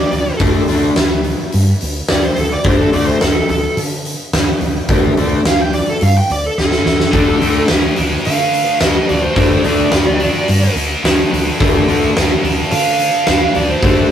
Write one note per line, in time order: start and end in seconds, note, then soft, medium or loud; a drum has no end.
0.00 0.39 D5 loud
0.12 0.30 D2 medium
0.12 open hi-hat medium
0.39 0.58 D2 medium
0.39 0.63 D3 medium
0.39 0.63 A3 medium
0.39 0.63 D4 medium
0.39 kick loud
0.39 open hi-hat medium
0.68 0.87 D2 medium
0.68 0.91 D3 medium
0.68 0.91 A3 medium
0.68 0.92 D4 loud
0.68 open hi-hat medium
0.96 1.33 D2 medium
0.96 snare loud
0.96 open hi-hat medium
1.24 open hi-hat soft
1.52 1.71 G2 medium
1.52 open hi-hat medium
1.81 2.00 D2 medium
1.81 open hi-hat medium
2.08 2.28 D2 medium
2.08 2.23 D5 loud
2.08 snare loud
2.08 open hi-hat medium
2.25 2.38 C5 medium
2.36 2.56 D2 medium
2.36 2.52 A4 medium
2.36 open hi-hat medium
2.52 2.67 D5 medium
2.64 2.83 D2 medium
2.64 2.88 D3 medium
2.64 2.88 A3 medium
2.64 2.88 D4 medium
2.64 2.80 C5 medium
2.64 kick loud
2.64 open hi-hat medium
2.81 2.94 A4 loud
2.93 3.12 D2 medium
2.93 3.16 D3 medium
2.93 3.16 A3 medium
2.93 3.16 D4 loud
2.93 3.05 D5 medium
2.93 open hi-hat medium
3.06 3.20 C5 medium
3.21 3.40 D2 medium
3.21 3.49 A4 medium
3.21 snare loud
3.21 open hi-hat medium
3.49 3.67 D2 medium
3.49 3.77 A4 loud
3.49 open hi-hat medium
3.77 4.13 D3 loud
3.77 open hi-hat medium
4.05 open hi-hat medium
4.33 4.51 D2 medium
4.33 snare loud
4.33 open hi-hat medium
4.61 4.79 D2 medium
4.61 open hi-hat soft
4.88 5.07 D2 loud
4.88 5.12 D3 medium
4.88 5.12 A3 medium
4.88 5.13 D4 medium
4.88 kick loud
4.88 open hi-hat medium
5.17 5.35 D2 medium
5.17 5.40 D3 loud
5.17 5.40 A3 medium
5.17 5.41 D4 loud
5.17 open hi-hat medium
5.45 5.80 D2 medium
5.45 5.61 F5 loud
5.45 snare loud
5.45 open hi-hat medium
5.61 5.74 G5 medium
5.73 5.87 D5 medium
5.73 open hi-hat medium
5.90 6.02 A4 medium
6.01 6.19 G2 medium
6.01 6.16 F5 medium
6.01 open hi-hat medium
6.17 6.30 G5 medium
6.30 6.48 D2 medium
6.30 6.44 D5 medium
6.30 open hi-hat medium
6.46 6.58 A4 medium
6.58 6.76 D2 medium
6.58 7.67 A4 loud
6.58 snare medium
6.72 snare medium
6.86 7.03 D2 medium
6.86 snare medium
7.00 snare medium
7.12 7.31 D2 medium
7.12 7.98 D3 medium
7.12 7.36 D3 medium
7.12 7.97 A3 medium
7.12 7.36 A3 medium
7.12 7.36 D4 loud
7.12 7.96 D4 medium
7.12 kick medium
7.12 open hi-hat medium
7.41 7.59 D2 medium
7.41 7.64 D3 medium
7.41 7.64 A3 loud
7.41 7.64 D4 medium
7.41 open hi-hat medium
7.68 7.88 D2 medium
7.68 snare loud
7.68 open hi-hat medium
7.96 8.16 D2 medium
7.96 8.80 D3 medium
7.96 8.81 A3 medium
7.96 8.83 D4 medium
7.96 open hi-hat medium
8.25 8.62 D3 medium
8.25 8.84 F5 loud
8.25 open hi-hat medium
8.53 open hi-hat medium
8.80 8.99 D2 medium
8.80 9.35 D3 medium
8.80 9.37 A3 medium
8.80 9.37 D4 medium
8.80 9.07 D#5 loud
8.80 snare loud
8.80 open hi-hat medium
9.09 9.27 D2 medium
9.09 9.22 D5 loud
9.09 open hi-hat medium
9.22 9.63 C5 loud
9.36 9.54 D2 loud
9.36 10.21 D3 medium
9.36 9.59 D3 medium
9.36 10.20 A3 loud
9.36 9.59 A3 medium
9.36 10.19 D4 loud
9.36 9.60 D4 medium
9.36 kick medium
9.36 open hi-hat medium
9.64 9.82 D2 medium
9.64 9.87 D3 medium
9.64 9.87 A3 medium
9.64 9.88 D4 loud
9.64 10.73 D5 medium
9.64 open hi-hat medium
9.91 10.27 D2 medium
9.91 snare loud
9.91 open hi-hat medium
10.19 11.03 D3 medium
10.19 11.04 A3 medium
10.19 11.05 D4 loud
10.19 open hi-hat soft
10.48 10.66 G2 loud
10.48 open hi-hat medium
10.75 10.93 D2 medium
10.75 open hi-hat medium
11.03 11.22 D2 medium
11.03 11.59 D3 medium
11.03 11.60 A3 medium
11.03 11.61 D4 medium
11.03 snare loud
11.03 open hi-hat medium
11.33 11.50 D2 medium
11.33 open hi-hat medium
11.59 11.78 D2 medium
11.59 12.45 D3 medium
11.59 11.82 D3 medium
11.59 12.44 A3 loud
11.59 11.83 A3 loud
11.59 12.43 D4 medium
11.59 11.83 D4 medium
11.59 kick loud
11.59 open hi-hat medium
11.88 12.06 D2 medium
11.88 12.10 D3 loud
11.88 12.11 A3 loud
11.88 12.11 D4 loud
11.88 open hi-hat medium
12.16 12.34 D2 medium
12.16 snare loud
12.16 open hi-hat medium
12.43 12.61 D2 medium
12.43 13.26 D3 medium
12.43 13.27 A3 medium
12.43 13.28 D4 medium
12.43 open hi-hat medium
12.71 13.07 D3 loud
12.71 13.53 F5 loud
12.71 open hi-hat medium
12.99 open hi-hat medium
13.26 13.45 D2 medium
13.26 13.82 D3 medium
13.26 13.83 A3 medium
13.26 13.84 D4 loud
13.26 snare loud
13.26 open hi-hat medium
13.55 13.73 D2 medium
13.55 13.70 D5 medium
13.55 open hi-hat medium
13.70 14.10 C5 medium
13.82 14.00 D2 loud
13.82 14.11 D3 medium
13.82 14.06 D3 medium
13.82 14.11 A3 medium
13.82 14.06 A3 medium
13.82 14.11 D4 loud
13.82 14.06 D4 medium
13.82 kick loud
13.82 open hi-hat medium